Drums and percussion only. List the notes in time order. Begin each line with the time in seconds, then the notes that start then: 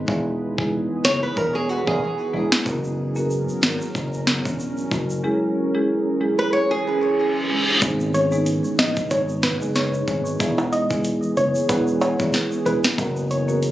0.08 kick
0.58 kick
1.05 snare
1.37 kick
1.87 kick
2.52 snare
2.66 kick, shaker
2.84 shaker
3.16 shaker
3.31 shaker
3.49 shaker
3.63 snare, shaker
3.81 shaker
3.95 kick, shaker
4.13 shaker
4.27 snare
4.45 kick, shaker
4.60 shaker
4.78 shaker
4.91 kick, shaker
5.10 shaker
7.82 kick, closed hi-hat, shaker
8.00 shaker
8.14 closed hi-hat, shaker
8.32 shaker
8.46 closed hi-hat, shaker
8.64 shaker
8.78 snare, closed hi-hat, shaker
8.96 kick, shaker
9.11 kick, closed hi-hat, shaker
9.29 shaker
9.43 kick, snare, closed hi-hat, shaker
9.61 shaker
9.75 snare, closed hi-hat, shaker
9.93 shaker
10.08 kick, closed hi-hat
10.26 shaker
10.40 kick, closed hi-hat, shaker
10.58 high timbale, shaker
10.73 closed hi-hat, shaker
10.90 kick, shaker
11.05 closed hi-hat, shaker
11.23 shaker
11.37 closed hi-hat, shaker
11.55 shaker
11.69 kick, closed hi-hat, high timbale, shaker
11.87 shaker
12.01 closed hi-hat, high timbale, shaker
12.20 kick, shaker
12.34 snare, closed hi-hat, shaker
12.52 shaker
12.66 closed hi-hat
12.84 snare, shaker
12.98 kick, closed hi-hat, shaker
13.16 shaker
13.31 closed hi-hat, shaker
13.49 shaker
13.63 closed hi-hat, shaker